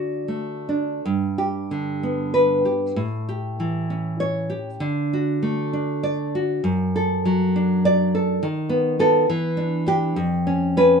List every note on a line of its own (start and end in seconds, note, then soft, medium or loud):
0.00 1.00 D3 medium
0.00 0.28 D4 soft
0.00 1.04 F#4 soft
0.00 0.12 D5 medium
0.28 1.05 A3 soft
0.69 1.05 D4 soft
1.05 2.94 G2 medium
1.38 2.33 G4 medium
1.71 2.66 D3 soft
2.03 2.97 B3 soft
2.34 2.84 B4 medium
2.65 2.97 G4 medium
2.96 4.77 A2 medium
3.29 4.21 G4 medium
3.60 4.51 E3 soft
3.90 4.82 C#4 soft
4.20 4.69 C#5 medium
4.50 4.81 G4 medium
4.80 6.60 D3 medium
5.13 6.05 F#4 medium
5.43 6.34 A3 medium
5.73 6.64 D4 soft
6.03 6.52 D5 medium
6.35 6.65 F#4 medium
6.64 8.38 F#2 medium
6.96 7.85 A4 medium
7.25 8.15 F#3 medium
7.56 8.43 D4 soft
7.85 8.31 D5 medium
8.15 8.43 A4 medium
8.43 9.25 D#3 medium
8.69 8.98 B3 medium
8.99 9.25 B3 medium
8.99 9.26 A4 medium
9.30 10.15 E3 medium
9.57 9.85 D4 medium
9.86 10.13 D4 medium
9.86 10.14 G4 medium
10.16 11.00 F2 medium
10.47 10.76 C#4 medium
10.77 11.00 C#4 medium
10.77 11.00 B4 medium